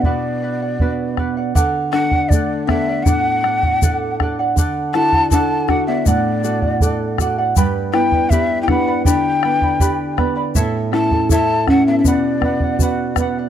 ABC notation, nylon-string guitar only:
X:1
M:2/4
L:1/8
Q:1/4=80
K:D
V:1 name="Nylon-string guitar"
B,,2 [B,DF]2 | D, D A D | A,, D A D | D, F A F |
A,, F A F | G,, B, G B, | D, B, G B, | A,, C A C |
B,, B, F B, |]